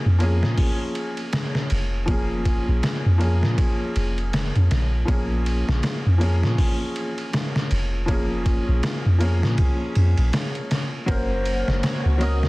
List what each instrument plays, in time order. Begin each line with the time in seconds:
Already playing: felt piano F3 A#3 C#4 G#4
0.06 808-style bass F2
0.18 felt piano F3 A#3 C#4, ride
0.23 felt piano G#4
0.43 808-style bass A#2, snare
0.57 kick, open hi-hat
0.95 ride
1.17 ride
1.33 snare, ride
1.55 snare
1.70 808-style bass F1, ride
2.06 felt piano F3 A#3 C#4, kick, ride
2.11 felt piano G#4
2.45 kick, ride
2.68 808-style bass A#1
2.83 snare, ride
3.06 808-style bass F2
3.18 felt piano F3 A#3 C#4, ride
3.23 felt piano G#4
3.43 808-style bass A#2, snare
3.58 kick, ride
3.96 808-style bass F1, ride
4.18 ride
4.33 snare, ride
4.56 808-style bass F2, ride
4.71 808-style bass A#1, snare, ride
5.05 808-style bass A#1, felt piano F3 A#3 C#4, kick, ride
5.10 felt piano G#4
5.46 ride
5.69 808-style bass A#1, snare
5.83 snare, ride
6.06 808-style bass F2
6.18 felt piano F3 A#3 C#4, ride
6.23 felt piano G#4
6.43 808-style bass A#2, snare
6.58 kick, open hi-hat
6.96 ride
7.18 ride
7.33 snare, ride
7.56 snare
7.71 808-style bass F1, ride
8.06 felt piano F3 A#3 C#4, kick, ride
8.11 felt piano G#4
8.46 kick, ride
8.68 808-style bass A#1
8.83 snare, ride
9.06 808-style bass F2
9.18 felt piano F3 A#3 C#4, ride
9.23 felt piano G#4
9.43 808-style bass A#2, snare
9.58 kick, ride
9.95 808-style bass F2, ride
10.18 808-style bass A#1, ride
10.33 snare, ride
10.55 ride
10.71 snare, ride
11.06 808-style bass F#1, felt piano F#3 A#3 C#4, string section A#3 C#4 F#4, hammered dulcimer C5, kick, ride
11.11 felt piano A#4
11.45 ride
11.68 808-style bass F#1, snare
11.83 hammered dulcimer C#5, snare, ride
12.05 808-style bass C#2
12.18 felt piano F#3 A#3 C#4, hammered dulcimer D#5, ride
12.23 felt piano A#4
12.43 808-style bass F#2, snare